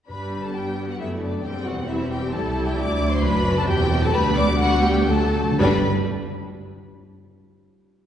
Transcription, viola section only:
0.09 0.96 G3 soft
0.09 0.52 D4 soft
0.55 1.45 B3 soft
1.00 1.45 A3 soft
1.45 1.89 G3 soft
1.45 1.88 C4 soft
1.90 2.77 G3 soft
1.90 2.33 C4 soft
2.34 3.23 E4 medium
2.79 4.14 F#3 medium
3.23 3.68 D4 medium
3.68 4.14 C4 medium
4.14 4.60 G3 medium
4.14 4.60 B3 medium
4.61 5.08 G3 medium
4.61 5.08 B3 medium
5.09 5.38 F#3 medium
5.09 5.38 A3 medium
5.60 5.87 G3 medium
5.60 5.87 D4 medium

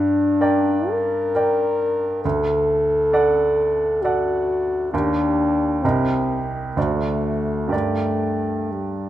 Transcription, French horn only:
0.00 0.92 D4 medium
0.90 2.24 A#4 medium
2.25 4.04 A4 medium
4.02 4.93 F#4 medium
4.93 5.84 D4 medium
5.83 6.47 C4 soft
6.76 7.68 A3 soft
7.72 8.74 A3 medium
8.72 9.09 G3 soft

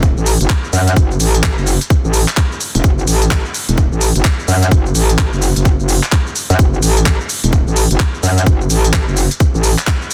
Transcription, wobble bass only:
0.00 0.15 E1 medium
0.17 0.38 A1 loud
0.41 0.48 F#1 loud
0.73 0.95 F#2 loud
0.96 1.18 F#1 medium
1.20 1.56 A1 loud
1.58 1.79 F#1 loud
2.05 2.26 A1 medium
2.75 2.83 E1 loud
2.84 3.06 F#1 medium
3.07 3.43 A1 loud
3.69 3.90 E1 loud
3.92 4.13 A1 loud
4.15 4.23 F#1 loud
4.48 4.70 F#2 medium
4.71 4.93 F#1 loud
4.95 5.30 A1 loud
5.33 5.54 F#1 medium
5.56 5.77 F#1 medium
5.80 6.01 F#1 medium
6.50 6.58 F#2 medium
6.59 6.81 F#1 medium
6.82 7.18 A1 loud
7.44 7.65 E1 medium
7.67 7.88 A1 loud
7.91 7.98 F#1 loud
8.23 8.45 F#2 medium
8.46 8.68 F#1 loud
8.70 9.06 A1 loud
9.08 9.29 F#1 loud
9.55 9.76 A1 loud

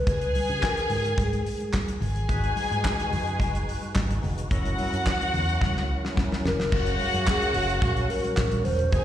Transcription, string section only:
0.07 1.70 G#4 loud
0.07 1.70 G#5 loud
2.02 4.19 G#4 medium
2.02 4.19 G#5 loud
4.51 6.40 F#4 loud
4.51 6.41 F#5 loud
6.73 8.62 F#4 loud
6.73 8.62 F#5 loud
8.93 9.04 G#4 loud
8.93 9.04 G#5 loud

